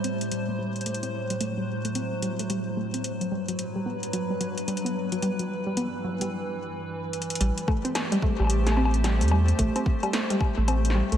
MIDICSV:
0, 0, Header, 1, 5, 480
1, 0, Start_track
1, 0, Tempo, 545455
1, 758, Time_signature, 4, 2, 24, 8
1, 9833, End_track
2, 0, Start_track
2, 0, Title_t, "Ambient pad"
2, 0, Program_c, 0, 92
2, 0, Note_on_c, 0, 45, 71
2, 0, Note_on_c, 0, 55, 64
2, 0, Note_on_c, 0, 72, 80
2, 738, Note_off_c, 0, 55, 0
2, 758, Note_on_c, 0, 54, 68
2, 2641, Note_off_c, 0, 45, 0
2, 2642, Note_off_c, 0, 72, 0
2, 2658, Note_off_c, 0, 54, 0
2, 2676, Note_on_c, 0, 43, 72
2, 2676, Note_on_c, 0, 71, 80
2, 2677, Note_on_c, 0, 54, 66
2, 4578, Note_off_c, 0, 54, 0
2, 4598, Note_on_c, 0, 52, 69
2, 6481, Note_off_c, 0, 43, 0
2, 6482, Note_off_c, 0, 71, 0
2, 6499, Note_off_c, 0, 52, 0
2, 6518, Note_on_c, 0, 57, 77
2, 6518, Note_on_c, 0, 67, 72
2, 6518, Note_on_c, 0, 72, 86
2, 9833, Note_off_c, 0, 57, 0
2, 9833, Note_off_c, 0, 67, 0
2, 9833, Note_off_c, 0, 72, 0
2, 9833, End_track
3, 0, Start_track
3, 0, Title_t, "Synth arpeggio sound"
3, 0, Program_c, 1, 84
3, 37, Note_on_c, 1, 60, 71
3, 178, Note_off_c, 1, 60, 0
3, 277, Note_on_c, 1, 55, 74
3, 419, Note_off_c, 1, 55, 0
3, 426, Note_on_c, 1, 57, 69
3, 490, Note_off_c, 1, 57, 0
3, 517, Note_on_c, 1, 55, 72
3, 621, Note_off_c, 1, 55, 0
3, 757, Note_on_c, 1, 57, 76
3, 861, Note_off_c, 1, 57, 0
3, 906, Note_on_c, 1, 60, 73
3, 992, Note_off_c, 1, 60, 0
3, 1146, Note_on_c, 1, 55, 71
3, 1233, Note_off_c, 1, 55, 0
3, 1237, Note_on_c, 1, 57, 82
3, 1341, Note_off_c, 1, 57, 0
3, 1385, Note_on_c, 1, 55, 74
3, 1449, Note_off_c, 1, 55, 0
3, 1627, Note_on_c, 1, 57, 74
3, 1690, Note_off_c, 1, 57, 0
3, 1718, Note_on_c, 1, 60, 77
3, 1859, Note_off_c, 1, 60, 0
3, 1957, Note_on_c, 1, 55, 69
3, 2099, Note_off_c, 1, 55, 0
3, 2107, Note_on_c, 1, 57, 66
3, 2170, Note_off_c, 1, 57, 0
3, 2198, Note_on_c, 1, 55, 75
3, 2301, Note_off_c, 1, 55, 0
3, 2437, Note_on_c, 1, 57, 69
3, 2541, Note_off_c, 1, 57, 0
3, 2586, Note_on_c, 1, 60, 71
3, 2673, Note_off_c, 1, 60, 0
3, 2826, Note_on_c, 1, 54, 70
3, 2913, Note_off_c, 1, 54, 0
3, 2917, Note_on_c, 1, 55, 75
3, 3021, Note_off_c, 1, 55, 0
3, 3066, Note_on_c, 1, 54, 71
3, 3130, Note_off_c, 1, 54, 0
3, 3306, Note_on_c, 1, 55, 75
3, 3370, Note_off_c, 1, 55, 0
3, 3397, Note_on_c, 1, 59, 70
3, 3538, Note_off_c, 1, 59, 0
3, 3637, Note_on_c, 1, 54, 80
3, 3778, Note_off_c, 1, 54, 0
3, 3786, Note_on_c, 1, 55, 73
3, 3850, Note_off_c, 1, 55, 0
3, 3877, Note_on_c, 1, 54, 75
3, 3981, Note_off_c, 1, 54, 0
3, 4117, Note_on_c, 1, 55, 78
3, 4221, Note_off_c, 1, 55, 0
3, 4266, Note_on_c, 1, 59, 72
3, 4353, Note_off_c, 1, 59, 0
3, 4506, Note_on_c, 1, 54, 72
3, 4593, Note_off_c, 1, 54, 0
3, 4597, Note_on_c, 1, 55, 81
3, 4701, Note_off_c, 1, 55, 0
3, 4746, Note_on_c, 1, 54, 71
3, 4810, Note_off_c, 1, 54, 0
3, 4986, Note_on_c, 1, 55, 74
3, 5050, Note_off_c, 1, 55, 0
3, 5077, Note_on_c, 1, 59, 83
3, 5219, Note_off_c, 1, 59, 0
3, 5317, Note_on_c, 1, 54, 72
3, 5459, Note_off_c, 1, 54, 0
3, 5466, Note_on_c, 1, 55, 73
3, 5530, Note_off_c, 1, 55, 0
3, 6517, Note_on_c, 1, 55, 84
3, 6621, Note_off_c, 1, 55, 0
3, 6757, Note_on_c, 1, 57, 79
3, 6861, Note_off_c, 1, 57, 0
3, 6906, Note_on_c, 1, 60, 78
3, 6992, Note_off_c, 1, 60, 0
3, 7146, Note_on_c, 1, 55, 82
3, 7233, Note_off_c, 1, 55, 0
3, 7237, Note_on_c, 1, 57, 76
3, 7341, Note_off_c, 1, 57, 0
3, 7386, Note_on_c, 1, 55, 74
3, 7450, Note_off_c, 1, 55, 0
3, 7626, Note_on_c, 1, 57, 75
3, 7690, Note_off_c, 1, 57, 0
3, 7717, Note_on_c, 1, 60, 76
3, 7859, Note_off_c, 1, 60, 0
3, 7957, Note_on_c, 1, 55, 83
3, 8099, Note_off_c, 1, 55, 0
3, 8106, Note_on_c, 1, 57, 76
3, 8169, Note_off_c, 1, 57, 0
3, 8197, Note_on_c, 1, 55, 73
3, 8301, Note_off_c, 1, 55, 0
3, 8437, Note_on_c, 1, 57, 83
3, 8541, Note_off_c, 1, 57, 0
3, 8586, Note_on_c, 1, 60, 77
3, 8673, Note_off_c, 1, 60, 0
3, 8826, Note_on_c, 1, 55, 77
3, 8913, Note_off_c, 1, 55, 0
3, 8917, Note_on_c, 1, 57, 86
3, 9021, Note_off_c, 1, 57, 0
3, 9066, Note_on_c, 1, 55, 81
3, 9130, Note_off_c, 1, 55, 0
3, 9306, Note_on_c, 1, 57, 77
3, 9370, Note_off_c, 1, 57, 0
3, 9397, Note_on_c, 1, 60, 82
3, 9539, Note_off_c, 1, 60, 0
3, 9636, Note_on_c, 1, 55, 76
3, 9778, Note_off_c, 1, 55, 0
3, 9785, Note_on_c, 1, 57, 74
3, 9833, Note_off_c, 1, 57, 0
3, 9833, End_track
4, 0, Start_track
4, 0, Title_t, "Sub bass"
4, 0, Program_c, 2, 38
4, 6517, Note_on_c, 2, 33, 100
4, 6609, Note_off_c, 2, 33, 0
4, 7386, Note_on_c, 2, 33, 82
4, 8106, Note_on_c, 2, 40, 83
4, 8119, Note_off_c, 2, 33, 0
4, 8381, Note_off_c, 2, 40, 0
4, 8437, Note_on_c, 2, 33, 102
4, 8529, Note_off_c, 2, 33, 0
4, 9305, Note_on_c, 2, 33, 78
4, 9694, Note_off_c, 2, 33, 0
4, 9786, Note_on_c, 2, 36, 101
4, 9833, Note_off_c, 2, 36, 0
4, 9833, End_track
5, 0, Start_track
5, 0, Title_t, "Drums"
5, 37, Note_on_c, 9, 42, 57
5, 125, Note_off_c, 9, 42, 0
5, 186, Note_on_c, 9, 42, 48
5, 274, Note_off_c, 9, 42, 0
5, 277, Note_on_c, 9, 42, 60
5, 365, Note_off_c, 9, 42, 0
5, 666, Note_on_c, 9, 42, 21
5, 712, Note_off_c, 9, 42, 0
5, 712, Note_on_c, 9, 42, 27
5, 757, Note_off_c, 9, 42, 0
5, 757, Note_on_c, 9, 42, 62
5, 831, Note_off_c, 9, 42, 0
5, 831, Note_on_c, 9, 42, 40
5, 906, Note_off_c, 9, 42, 0
5, 906, Note_on_c, 9, 42, 34
5, 994, Note_off_c, 9, 42, 0
5, 1146, Note_on_c, 9, 42, 49
5, 1234, Note_off_c, 9, 42, 0
5, 1237, Note_on_c, 9, 42, 61
5, 1325, Note_off_c, 9, 42, 0
5, 1626, Note_on_c, 9, 42, 47
5, 1714, Note_off_c, 9, 42, 0
5, 1717, Note_on_c, 9, 42, 62
5, 1805, Note_off_c, 9, 42, 0
5, 1958, Note_on_c, 9, 42, 54
5, 2046, Note_off_c, 9, 42, 0
5, 2107, Note_on_c, 9, 42, 50
5, 2195, Note_off_c, 9, 42, 0
5, 2198, Note_on_c, 9, 42, 58
5, 2286, Note_off_c, 9, 42, 0
5, 2586, Note_on_c, 9, 42, 47
5, 2674, Note_off_c, 9, 42, 0
5, 2678, Note_on_c, 9, 42, 59
5, 2766, Note_off_c, 9, 42, 0
5, 2826, Note_on_c, 9, 42, 32
5, 2914, Note_off_c, 9, 42, 0
5, 3066, Note_on_c, 9, 42, 50
5, 3154, Note_off_c, 9, 42, 0
5, 3157, Note_on_c, 9, 42, 59
5, 3245, Note_off_c, 9, 42, 0
5, 3546, Note_on_c, 9, 42, 47
5, 3634, Note_off_c, 9, 42, 0
5, 3637, Note_on_c, 9, 42, 60
5, 3725, Note_off_c, 9, 42, 0
5, 3878, Note_on_c, 9, 42, 57
5, 3966, Note_off_c, 9, 42, 0
5, 4026, Note_on_c, 9, 42, 50
5, 4114, Note_off_c, 9, 42, 0
5, 4118, Note_on_c, 9, 42, 56
5, 4198, Note_off_c, 9, 42, 0
5, 4198, Note_on_c, 9, 42, 47
5, 4278, Note_off_c, 9, 42, 0
5, 4278, Note_on_c, 9, 42, 37
5, 4366, Note_off_c, 9, 42, 0
5, 4506, Note_on_c, 9, 42, 47
5, 4594, Note_off_c, 9, 42, 0
5, 4598, Note_on_c, 9, 42, 61
5, 4686, Note_off_c, 9, 42, 0
5, 4746, Note_on_c, 9, 42, 34
5, 4834, Note_off_c, 9, 42, 0
5, 5077, Note_on_c, 9, 42, 59
5, 5165, Note_off_c, 9, 42, 0
5, 5466, Note_on_c, 9, 42, 46
5, 5554, Note_off_c, 9, 42, 0
5, 6277, Note_on_c, 9, 42, 49
5, 6351, Note_off_c, 9, 42, 0
5, 6351, Note_on_c, 9, 42, 59
5, 6426, Note_off_c, 9, 42, 0
5, 6426, Note_on_c, 9, 42, 67
5, 6472, Note_off_c, 9, 42, 0
5, 6472, Note_on_c, 9, 42, 77
5, 6517, Note_off_c, 9, 42, 0
5, 6517, Note_on_c, 9, 42, 86
5, 6605, Note_off_c, 9, 42, 0
5, 6667, Note_on_c, 9, 42, 55
5, 6755, Note_off_c, 9, 42, 0
5, 6757, Note_on_c, 9, 36, 117
5, 6757, Note_on_c, 9, 60, 52
5, 6845, Note_off_c, 9, 36, 0
5, 6845, Note_off_c, 9, 60, 0
5, 6907, Note_on_c, 9, 42, 40
5, 6995, Note_off_c, 9, 42, 0
5, 6997, Note_on_c, 9, 38, 116
5, 6997, Note_on_c, 9, 42, 81
5, 6997, Note_on_c, 9, 60, 82
5, 7085, Note_off_c, 9, 38, 0
5, 7085, Note_off_c, 9, 42, 0
5, 7085, Note_off_c, 9, 60, 0
5, 7146, Note_on_c, 9, 42, 59
5, 7146, Note_on_c, 9, 64, 93
5, 7234, Note_off_c, 9, 42, 0
5, 7234, Note_off_c, 9, 64, 0
5, 7237, Note_on_c, 9, 36, 104
5, 7325, Note_off_c, 9, 36, 0
5, 7386, Note_on_c, 9, 60, 25
5, 7409, Note_off_c, 9, 60, 0
5, 7409, Note_on_c, 9, 60, 31
5, 7432, Note_off_c, 9, 60, 0
5, 7432, Note_on_c, 9, 60, 39
5, 7455, Note_off_c, 9, 60, 0
5, 7455, Note_on_c, 9, 60, 44
5, 7477, Note_on_c, 9, 42, 82
5, 7543, Note_off_c, 9, 60, 0
5, 7565, Note_off_c, 9, 42, 0
5, 7626, Note_on_c, 9, 38, 62
5, 7626, Note_on_c, 9, 42, 55
5, 7626, Note_on_c, 9, 60, 36
5, 7672, Note_off_c, 9, 60, 0
5, 7672, Note_on_c, 9, 60, 46
5, 7714, Note_off_c, 9, 38, 0
5, 7714, Note_off_c, 9, 42, 0
5, 7717, Note_off_c, 9, 60, 0
5, 7717, Note_on_c, 9, 60, 57
5, 7791, Note_off_c, 9, 60, 0
5, 7791, Note_on_c, 9, 60, 69
5, 7866, Note_on_c, 9, 42, 37
5, 7879, Note_off_c, 9, 60, 0
5, 7954, Note_off_c, 9, 42, 0
5, 7957, Note_on_c, 9, 38, 111
5, 7957, Note_on_c, 9, 42, 78
5, 7957, Note_on_c, 9, 60, 53
5, 8045, Note_off_c, 9, 38, 0
5, 8045, Note_off_c, 9, 42, 0
5, 8045, Note_off_c, 9, 60, 0
5, 8106, Note_on_c, 9, 42, 51
5, 8116, Note_off_c, 9, 42, 0
5, 8116, Note_on_c, 9, 42, 40
5, 8166, Note_off_c, 9, 42, 0
5, 8166, Note_on_c, 9, 42, 34
5, 8197, Note_on_c, 9, 60, 82
5, 8254, Note_off_c, 9, 42, 0
5, 8285, Note_off_c, 9, 60, 0
5, 8346, Note_on_c, 9, 42, 37
5, 8434, Note_off_c, 9, 42, 0
5, 8437, Note_on_c, 9, 36, 87
5, 8437, Note_on_c, 9, 42, 88
5, 8525, Note_off_c, 9, 36, 0
5, 8525, Note_off_c, 9, 42, 0
5, 8586, Note_on_c, 9, 42, 52
5, 8586, Note_on_c, 9, 60, 54
5, 8674, Note_off_c, 9, 42, 0
5, 8674, Note_off_c, 9, 60, 0
5, 8677, Note_on_c, 9, 36, 119
5, 8765, Note_off_c, 9, 36, 0
5, 8827, Note_on_c, 9, 42, 39
5, 8827, Note_on_c, 9, 60, 80
5, 8915, Note_off_c, 9, 42, 0
5, 8915, Note_off_c, 9, 60, 0
5, 8918, Note_on_c, 9, 38, 123
5, 8918, Note_on_c, 9, 42, 79
5, 9006, Note_off_c, 9, 38, 0
5, 9006, Note_off_c, 9, 42, 0
5, 9067, Note_on_c, 9, 42, 58
5, 9067, Note_on_c, 9, 64, 93
5, 9155, Note_off_c, 9, 42, 0
5, 9155, Note_off_c, 9, 64, 0
5, 9157, Note_on_c, 9, 36, 105
5, 9158, Note_on_c, 9, 60, 53
5, 9245, Note_off_c, 9, 36, 0
5, 9246, Note_off_c, 9, 60, 0
5, 9398, Note_on_c, 9, 42, 79
5, 9398, Note_on_c, 9, 60, 81
5, 9486, Note_off_c, 9, 42, 0
5, 9486, Note_off_c, 9, 60, 0
5, 9546, Note_on_c, 9, 42, 55
5, 9592, Note_on_c, 9, 38, 63
5, 9634, Note_off_c, 9, 42, 0
5, 9680, Note_off_c, 9, 38, 0
5, 9786, Note_on_c, 9, 42, 39
5, 9833, Note_off_c, 9, 42, 0
5, 9833, End_track
0, 0, End_of_file